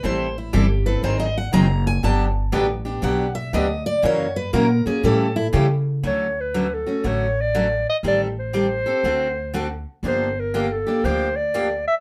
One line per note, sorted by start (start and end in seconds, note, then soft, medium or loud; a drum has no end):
0.03 0.52 A1 medium
0.03 0.26 E3 medium
0.03 0.26 G3 medium
0.03 0.26 C4 medium
0.03 0.26 E4 medium
0.03 0.26 A4 medium
0.03 0.36 C5 medium
0.38 0.54 E4 medium
0.53 1.02 G1 medium
0.53 0.65 E3 medium
0.53 0.65 G3 medium
0.53 0.65 C4 medium
0.53 0.65 E4 medium
0.53 0.85 G4 medium
0.53 0.65 A4 medium
0.86 1.02 C4 soft
0.86 1.03 E4 medium
0.86 1.03 A4 medium
0.86 1.03 B4 medium
1.03 1.52 G#1 medium
1.03 1.26 D#3 medium
1.03 1.26 F#3 medium
1.03 1.26 C4 medium
1.03 1.26 D#4 medium
1.03 1.26 G#4 medium
1.03 1.19 C5 medium
1.20 1.36 D#5 medium
1.38 1.53 F#5 medium
1.53 2.02 F#1 medium
1.53 1.65 D#3 medium
1.53 1.65 F#3 medium
1.53 1.65 C4 medium
1.53 1.65 D#4 medium
1.53 1.66 G#4 medium
1.53 1.85 A#5 loud
1.87 2.04 G#5 loud
2.03 2.52 G1 medium
2.03 2.26 D3 medium
2.03 2.26 F#3 medium
2.03 2.26 B3 medium
2.03 2.26 D4 medium
2.03 2.26 G4 medium
2.03 2.24 A5 medium
2.52 3.02 A1 medium
2.52 2.65 D3 medium
2.52 2.65 F#3 medium
2.52 2.65 B3 medium
2.52 2.65 D4 medium
2.52 2.65 G4 medium
2.85 3.02 B3 medium
2.85 3.01 D4 medium
2.85 3.02 G4 medium
3.02 3.52 B1 medium
3.02 3.25 D3 medium
3.02 3.25 F#3 medium
3.02 3.25 B3 medium
3.02 3.25 D4 medium
3.02 3.25 G4 medium
3.02 3.35 F#5 loud
3.35 3.53 E5 loud
3.53 4.02 D2 medium
3.53 3.65 D3 medium
3.53 3.66 F#3 loud
3.53 3.66 B3 medium
3.53 3.66 D4 medium
3.53 3.66 G4 medium
3.53 3.86 D#5 medium
3.86 4.03 D5 loud
4.02 4.52 F#2 medium
4.02 4.25 C#3 medium
4.02 4.26 E3 medium
4.02 4.26 F#3 medium
4.02 4.26 A#3 medium
4.02 4.26 C#4 medium
4.02 4.26 E4 medium
4.02 4.26 F#4 medium
4.02 4.26 A#4 medium
4.02 4.36 C#5 loud
4.36 4.53 B4 medium
4.53 4.84 A#2 medium
4.53 4.65 C#3 medium
4.53 4.65 E3 medium
4.53 4.66 F#3 medium
4.53 4.65 A#3 medium
4.53 4.65 C#4 medium
4.53 4.66 E4 loud
4.53 4.66 F#4 medium
4.53 4.85 A#4 medium
4.53 4.67 A#4 loud
4.86 5.03 A#3 soft
4.86 5.03 C#4 medium
4.86 5.03 F#4 medium
4.86 5.03 G#4 medium
4.86 muted upright bass stroke soft
5.03 5.52 A2 medium
5.03 5.26 C#3 medium
5.03 5.26 E3 medium
5.03 5.27 G3 medium
5.03 5.26 A3 medium
5.03 5.26 C#4 medium
5.03 5.27 E4 medium
5.03 5.26 G4 medium
5.03 5.36 A4 medium
5.03 5.27 A4 medium
5.36 5.47 E4 medium
5.53 5.65 C#3 medium
5.53 6.02 C#3 medium
5.53 5.65 E3 medium
5.53 5.66 G3 medium
5.53 5.65 A3 medium
5.53 5.65 C#4 medium
5.53 5.66 E4 medium
5.53 5.65 G4 medium
5.53 5.66 A4 medium
6.03 6.84 D2 medium
6.03 6.26 D3 medium
6.03 6.26 F#3 medium
6.03 6.26 A3 medium
6.03 6.26 C#4 medium
6.03 6.26 F#4 medium
6.03 6.42 C#5 medium
6.40 6.75 B4 medium
6.54 6.66 D3 medium
6.54 6.66 F#3 medium
6.54 6.66 A3 medium
6.54 6.66 C#4 medium
6.54 6.66 F#4 medium
6.74 7.08 A4 medium
6.86 7.03 A3 soft
6.86 7.04 C#4 soft
6.86 7.03 F#4 medium
7.04 7.84 A1 medium
7.04 7.26 D3 medium
7.04 7.26 F#3 medium
7.04 7.26 A3 medium
7.04 7.27 C#4 medium
7.04 7.26 F#4 medium
7.04 7.42 C#5 loud
7.41 7.89 D5 medium
7.55 7.66 D3 medium
7.55 7.66 F#3 medium
7.55 7.66 A3 medium
7.55 7.66 C#4 medium
7.55 7.66 F#4 medium
7.89 7.97 D#5 medium
8.03 8.84 A1 medium
8.03 8.26 D#3 medium
8.03 8.26 G3 medium
8.03 8.26 C4 medium
8.03 8.27 G4 medium
8.03 8.27 A4 medium
8.08 8.21 D5 medium
8.39 9.84 C5 loud
8.53 8.65 D#3 medium
8.53 8.66 G3 medium
8.53 8.66 C4 medium
8.53 8.66 G4 medium
8.53 8.66 A4 medium
8.86 9.04 C4 soft
8.86 9.04 G4 soft
8.86 9.03 A4 medium
9.04 9.84 D2 medium
9.04 9.27 D3 medium
9.04 9.27 A3 medium
9.04 9.27 C4 medium
9.04 9.27 F#4 medium
9.04 9.27 A4 medium
9.54 9.66 D3 medium
9.54 9.66 A3 medium
9.54 9.66 C4 medium
9.54 9.66 F#4 medium
9.54 9.66 A4 medium
10.03 10.84 G1 medium
10.03 10.26 D3 medium
10.03 10.27 F3 medium
10.03 10.27 A#3 medium
10.03 10.27 D4 medium
10.03 10.27 G4 medium
10.07 10.41 C5 medium
10.40 10.73 A#4 medium
10.54 10.66 D3 medium
10.54 10.66 F3 medium
10.54 10.66 A#3 medium
10.54 10.66 D4 medium
10.54 10.66 G4 medium
10.72 11.06 A4 medium
10.87 11.04 A#3 soft
10.87 11.04 D4 soft
10.87 11.04 G4 medium
11.04 11.84 D2 medium
11.04 11.27 D3 medium
11.04 11.27 F3 medium
11.04 11.27 A#3 medium
11.04 11.27 D4 medium
11.04 11.27 G4 medium
11.04 11.38 C5 loud
11.36 11.87 D5 medium
11.54 11.66 D3 medium
11.54 11.66 F3 medium
11.54 11.66 A#3 medium
11.54 11.67 D4 medium
11.54 11.67 G4 medium
11.87 11.95 E5 loud